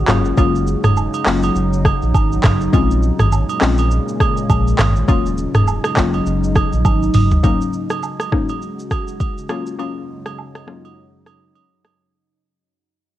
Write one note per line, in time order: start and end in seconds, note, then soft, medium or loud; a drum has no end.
0.00 2.69 C#3 medium
0.08 0.32 F#1 loud
0.08 0.36 F#3 medium
0.08 2.71 F#3 medium
0.08 0.36 A#3 medium
0.08 0.36 C#4 medium
0.08 2.71 D#4 medium
0.08 0.36 F4 loud
0.08 cross-stick loud
0.08 clap loud
0.08 mid tom medium
0.08 open hi-hat medium
0.08 high agogo medium
0.08 shaker medium
0.25 shaker medium
0.38 0.75 F#1 loud
0.38 0.93 F#3 loud
0.38 0.93 A#3 medium
0.38 0.93 C#4 medium
0.38 0.93 F4 loud
0.38 kick loud
0.38 high agogo medium
0.38 shaker medium
0.56 shaker medium
0.67 shaker medium
0.84 1.08 D#1 medium
0.84 cross-stick medium
0.84 mid tom medium
0.84 high agogo medium
0.84 shaker medium
0.97 low woodblock medium
0.97 shaker medium
1.14 high agogo medium
1.14 shaker medium
1.26 1.50 F#1 loud
1.26 1.44 F#3 medium
1.26 1.44 A#3 medium
1.26 1.44 C#4 medium
1.26 1.44 F4 medium
1.26 cross-stick medium
1.26 clap medium
1.26 open hi-hat medium
1.26 shaker medium
1.43 high agogo medium
1.43 shaker medium
1.55 1.93 F#1 loud
1.55 shaker medium
1.73 shaker medium
1.85 kick medium
1.85 cross-stick loud
1.85 high agogo medium
2.02 2.12 A#1 loud
2.02 shaker medium
2.14 2.38 G#1 loud
2.14 kick loud
2.14 high agogo medium
2.14 low woodblock medium
2.14 shaker medium
2.32 shaker medium
2.43 2.68 F#1 loud
2.43 kick loud
2.43 cross-stick loud
2.43 clap loud
2.43 mid tom medium
2.43 open hi-hat medium
2.43 high agogo medium
2.43 shaker medium
2.61 shaker medium
2.73 3.11 A#1 loud
2.73 5.06 A#2 medium
2.73 5.06 C#3 loud
2.73 3.28 G#3 medium
2.73 5.06 G#3 medium
2.73 3.28 C4 medium
2.73 3.28 C#4 medium
2.73 3.28 F4 loud
2.73 kick loud
2.73 high agogo medium
2.73 shaker medium
2.91 shaker medium
3.03 shaker medium
3.19 3.44 G#1 loud
3.19 cross-stick medium
3.19 mid tom medium
3.19 high agogo medium
3.19 shaker medium
3.32 low woodblock medium
3.32 shaker medium
3.49 high agogo medium
3.49 shaker medium
3.61 3.99 A#1 loud
3.61 3.79 G#3 medium
3.61 3.79 C4 medium
3.61 3.80 C#4 medium
3.61 3.80 F4 medium
3.61 cross-stick medium
3.61 clap medium
3.61 open hi-hat medium
3.61 shaker medium
3.78 high agogo medium
3.78 shaker medium
3.91 shaker medium
4.08 shaker medium
4.20 kick medium
4.20 cross-stick medium
4.20 high agogo medium
4.37 shaker medium
4.49 4.73 A#1 loud
4.49 kick medium
4.49 high agogo medium
4.49 low woodblock medium
4.49 shaker medium
4.67 shaker medium
4.78 5.03 G#1 loud
4.78 cross-stick loud
4.78 clap loud
4.78 mid tom medium
4.78 open hi-hat medium
4.78 high agogo medium
4.78 shaker medium
4.96 shaker medium
5.08 5.46 D#1 loud
5.08 7.41 C#3 medium
5.08 5.63 F#3 medium
5.08 7.41 F#3 medium
5.08 5.63 A#3 medium
5.08 5.63 C#4 medium
5.08 7.41 D#4 loud
5.08 5.63 F4 loud
5.08 kick loud
5.08 high agogo medium
5.08 shaker medium
5.26 shaker medium
5.38 shaker medium
5.55 5.79 D#1 loud
5.55 cross-stick medium
5.55 mid tom medium
5.55 high agogo medium
5.55 shaker medium
5.67 low woodblock medium
5.67 shaker medium
5.84 cross-stick loud
5.84 high agogo medium
5.84 shaker medium
5.97 6.20 F#1 loud
5.97 6.15 F#3 medium
5.97 6.15 A#3 medium
5.97 6.15 C#4 medium
5.97 6.15 F4 medium
5.97 kick loud
5.97 cross-stick medium
5.97 clap medium
5.97 open hi-hat medium
5.97 shaker medium
6.13 high agogo medium
6.13 shaker medium
6.26 6.64 F#1 loud
6.26 shaker medium
6.44 shaker medium
6.56 kick medium
6.56 cross-stick loud
6.56 high agogo medium
6.56 shaker medium
6.73 6.83 A#1 medium
6.73 shaker soft
6.85 7.09 G#1 loud
6.85 kick medium
6.85 high tom medium
6.85 high agogo medium
6.85 low woodblock medium
6.85 shaker medium
7.03 shaker medium
7.14 7.38 F#1 loud
7.14 mid tom loud
7.14 open hi-hat medium
7.14 high agogo medium
7.14 shaker medium
7.31 floor tom loud
7.31 shaker medium
7.43 7.98 G#2 medium
7.43 9.48 C#3 medium
7.43 7.98 F#3 medium
7.43 9.48 G#3 medium
7.43 7.99 A#3 medium
7.43 7.99 C#4 medium
7.43 7.99 D#4 loud
7.43 9.48 F#4 medium
7.43 kick loud
7.43 high agogo medium
7.43 shaker medium
7.61 shaker soft
7.73 shaker soft
7.90 cross-stick medium
7.90 high agogo medium
7.90 shaker medium
8.03 low woodblock medium
8.03 shaker medium
8.20 cross-stick medium
8.20 high agogo medium
8.20 shaker medium
8.32 8.50 G#2 medium
8.32 8.50 F#3 medium
8.32 8.50 A#3 medium
8.32 8.50 C#4 medium
8.32 8.50 D#4 medium
8.32 kick medium
8.32 cross-stick medium
8.49 high agogo medium
8.49 shaker medium
8.62 shaker medium
8.79 shaker medium
8.91 kick medium
8.91 cross-stick medium
8.91 high agogo medium
8.91 shaker medium
9.08 shaker soft
9.20 kick medium
9.20 high agogo medium
9.20 shaker medium
9.38 shaker medium
9.49 12.12 F#2 medium
9.49 12.12 C#3 medium
9.49 12.11 F#3 medium
9.49 9.77 F#3 medium
9.49 9.77 A#3 medium
9.49 9.77 C#4 medium
9.49 12.11 D#4 medium
9.49 9.77 F4 loud
9.49 cross-stick loud
9.49 high agogo medium
9.49 shaker soft
9.66 shaker soft
9.79 10.34 F#3 medium
9.79 10.34 A#3 medium
9.79 10.34 C#4 medium
9.79 10.34 F4 loud
9.79 high agogo medium
10.26 cross-stick medium
10.26 high agogo medium
10.38 low woodblock medium
10.55 cross-stick medium
10.55 high agogo medium
10.67 10.85 F#3 medium
10.67 10.85 A#3 medium
10.67 10.86 C#4 medium
10.67 10.86 F4 medium
10.67 cross-stick medium
10.85 high agogo medium
11.26 cross-stick medium
11.26 high agogo medium
11.55 high agogo medium
11.85 cross-stick medium
11.85 high agogo medium